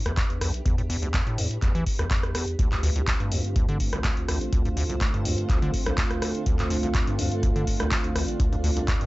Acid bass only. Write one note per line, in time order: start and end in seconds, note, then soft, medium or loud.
0.06 0.12 D2 medium
0.17 0.24 E2 medium
0.41 0.52 E2 medium
0.65 0.76 E2 medium
0.78 0.82 A2 medium
0.90 0.97 E2 loud
1.02 1.09 D2 medium
1.14 1.21 E2 medium
1.27 1.40 A2 medium
1.38 1.49 E2 medium
1.62 1.73 E2 medium
1.75 1.84 E3 loud
1.99 2.05 D2 medium
2.11 2.18 E2 medium
2.35 2.45 E2 medium
2.59 2.70 D2 medium
2.72 2.76 G2 medium
2.83 2.90 D2 loud
2.96 3.02 C2 medium
3.07 3.15 D2 medium
3.20 3.33 G2 medium
3.32 3.42 D2 medium
3.56 3.66 D2 medium
3.69 3.78 D3 loud
3.93 3.99 C2 medium
4.04 4.11 D2 medium
4.28 4.39 D2 medium
4.53 4.63 D2 medium
4.65 4.69 G2 medium
4.77 4.84 D2 loud
4.90 4.96 C2 medium
5.01 5.08 D2 medium
5.14 5.27 G2 medium
5.25 5.36 D2 medium
5.50 5.60 D2 medium
5.62 5.72 D3 loud
5.86 5.93 C2 medium
5.98 6.05 D2 medium
6.22 6.33 D2 medium
6.46 6.57 D2 medium
6.59 6.63 G2 medium
6.70 6.77 D2 loud
6.83 6.89 C2 medium
6.95 7.02 D2 medium
7.07 7.20 G2 medium
7.19 7.29 D2 medium
7.43 7.54 D2 medium
7.56 7.65 D3 loud
7.80 7.86 C2 medium
7.91 7.98 D2 medium
8.16 8.26 D2 medium
8.40 8.50 D2 medium
8.53 8.56 G2 medium
8.64 8.71 D2 loud
8.77 8.83 C2 medium
8.88 8.95 D2 medium
9.01 9.06 G2 medium